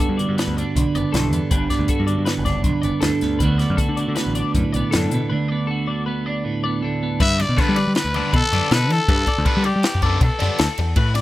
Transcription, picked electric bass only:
0.09 G2
0.29 G2
0.48 D2
0.76 B1
0.96 F#1
1.14 B1
1.33 E2
1.51 G1
1.79 D2
2.00 G2
2.18 G2
2.38 F#1
2.64 B1
2.84 F#1
3.02 D2
3.23 D2
3.41 D2
3.70 F#2
3.89 D3
4.08 D3
4.27 A1
4.55 F#2
4.75 B1
4.95 F#2
5.13 B2
7.21 G2
7.49 B2
7.69 G3
7.88 G3
8.05 D2
8.34 B2
8.53 F#2
8.71 B2
8.90 E3
9.08 G2
9.38 D2
9.57 G3
9.76 G3
9.95 F#2
10.21 B2
10.42 F#2
10.60 D2
10.79 E2
10.96 A2

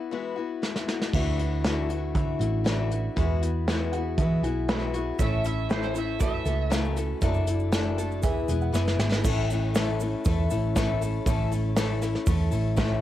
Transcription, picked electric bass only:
1.13 D2
2.15 D3
2.40 A1
3.16 E2
4.18 E3
4.42 B1
5.19 A1
6.20 F#1
6.45 C#2
7.21 F#1
8.23 E1
8.48 E1
8.73 F#1
8.98 G#1
9.25 A1
10.26 E2
10.52 A1
11.26 A1
12.27 E2
12.52 A1

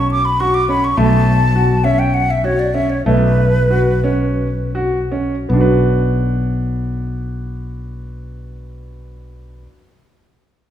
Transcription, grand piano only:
Already playing: C#4
0.40 F#4
0.69 C#4
0.97 A3
1.55 F#4
1.84 C#4
2.44 F#4
2.74 C#4
3.06 A3
3.70 F#4
4.04 C#4
4.75 F#4
5.12 C#4
5.49 B3
5.53 D4 F#4
5.61 B4

